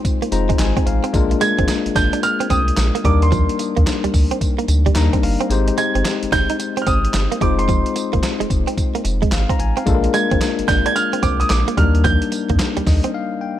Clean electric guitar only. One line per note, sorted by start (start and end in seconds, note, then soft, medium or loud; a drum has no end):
0.22 0.28 A#3 medium
0.32 muted clean electric guitar stroke soft
0.49 0.55 G#3 medium
0.77 0.83 C4 medium
0.87 muted clean electric guitar stroke soft
1.04 1.10 C4 medium
1.31 muted clean electric guitar stroke soft
1.41 1.52 G#3 medium
1.59 1.65 C4 medium
1.69 muted clean electric guitar stroke soft
1.96 2.07 D4 medium
2.13 2.19 D4 medium
2.23 muted clean electric guitar stroke soft
2.40 2.46 C4 medium
2.50 2.61 C4 medium
2.78 muted clean electric guitar stroke soft
2.95 3.01 A#3 medium
3.05 3.16 G3 medium
3.32 3.43 F3 medium
3.60 muted clean electric guitar stroke soft
3.77 3.83 A#3 medium
4.04 4.10 G3 medium
4.14 muted clean electric guitar stroke soft
4.31 4.37 C4 medium
4.59 4.65 A#3 medium
4.69 muted clean electric guitar stroke medium
4.86 4.92 G3 medium
5.13 5.19 C4 medium
5.23 muted clean electric guitar stroke soft
5.41 5.47 C4 medium
5.68 muted clean electric guitar stroke soft
5.78 5.89 G#3 medium
5.95 6.01 C4 medium
6.05 muted clean electric guitar stroke soft
6.32 6.43 D#4 medium
6.50 6.56 D#4 medium
6.60 muted clean electric guitar stroke soft
6.77 6.83 C4 medium
6.87 6.98 C4 medium
7.14 muted clean electric guitar stroke soft
7.32 7.38 A#3 medium
7.41 7.52 G#3 medium
7.69 7.80 F3 medium
7.96 muted clean electric guitar stroke soft
8.13 8.19 A#3 medium
8.40 8.46 G#3 medium
8.50 muted clean electric guitar stroke soft
8.67 8.74 C4 medium
8.95 9.01 A#3 medium
9.05 muted clean electric guitar stroke soft
9.22 9.28 G#3 medium
9.49 9.56 C4 medium
9.59 muted clean electric guitar stroke soft
9.77 9.83 C4 medium
10.04 muted clean electric guitar stroke soft
10.14 10.25 G#3 medium
10.31 10.38 C4 medium
10.41 muted clean electric guitar stroke soft
10.68 10.79 D4 medium
10.86 10.92 D4 medium
10.96 muted clean electric guitar stroke soft
11.13 11.19 C4 medium
11.23 11.34 C4 medium
11.51 muted clean electric guitar stroke soft
11.68 11.74 A#3 medium
11.78 11.89 G3 medium
12.05 12.16 F3 medium
12.32 muted clean electric guitar stroke soft
12.50 12.56 A#3 medium
12.77 12.83 G3 medium
12.87 muted clean electric guitar stroke soft
13.04 13.10 C4 medium